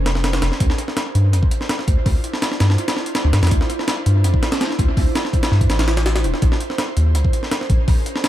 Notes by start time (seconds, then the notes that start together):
Already playing: F1 C#4 G#4 A#4 C5
0.06 snare, closed hi-hat
0.15 snare
0.24 snare, closed hi-hat
0.33 snare, closed hi-hat
0.42 F1, snare, closed hi-hat
0.52 snare
0.60 D2 D4 E4 F4 C5, kick, closed hi-hat
0.70 snare
0.78 closed hi-hat
0.88 snare
0.97 snare, closed hi-hat
1.15 G2, closed hi-hat
1.33 F2, closed hi-hat
1.43 kick
1.51 closed hi-hat
1.61 snare
1.69 snare, closed hi-hat
1.79 snare
1.88 D2, kick, closed hi-hat
2.06 D2, kick, open hi-hat
2.24 closed hi-hat
2.34 snare
2.42 snare, closed hi-hat
2.52 snare
2.60 G2, snare, closed hi-hat
2.70 snare
2.78 closed hi-hat
2.88 snare, closed hi-hat
2.97 snare
3.06 closed hi-hat
3.15 snare, closed hi-hat
3.24 D2
3.33 G2, snare, closed hi-hat
3.43 F2, snare, closed hi-hat
3.47 snare, closed hi-hat
3.51 D2, kick, closed hi-hat
3.61 snare
3.70 closed hi-hat
3.79 snare
3.88 snare, closed hi-hat
4.06 G2, closed hi-hat
4.24 F2, closed hi-hat
4.34 kick
4.43 snare, closed hi-hat
4.52 snare, closed hi-hat
4.61 snare, closed hi-hat
4.71 snare
4.79 D2, kick, closed hi-hat
4.97 D2, kick, open hi-hat
5.15 snare, closed hi-hat
5.25 snare
5.33 kick, closed hi-hat
5.43 snare, closed hi-hat
5.51 G2, snare
5.61 kick, closed hi-hat
5.70 A1, snare, closed hi-hat
5.79 snare, closed hi-hat
5.88 snare, closed hi-hat
5.97 snare, closed hi-hat
6.06 snare, closed hi-hat
6.16 snare, closed hi-hat
6.24 D1, closed hi-hat
6.34 snare
6.42 A#1 C#4 G#4 A#4, kick, closed hi-hat
6.52 snare
6.60 closed hi-hat
6.70 snare
6.78 snare, closed hi-hat
6.97 D#2, closed hi-hat
7.15 C#2, closed hi-hat
7.25 kick
7.33 closed hi-hat
7.43 snare
7.51 snare, closed hi-hat
7.61 snare
7.70 A#1, kick, closed hi-hat
7.88 A#1, kick, open hi-hat
8.06 closed hi-hat
8.16 snare
8.24 snare, closed hi-hat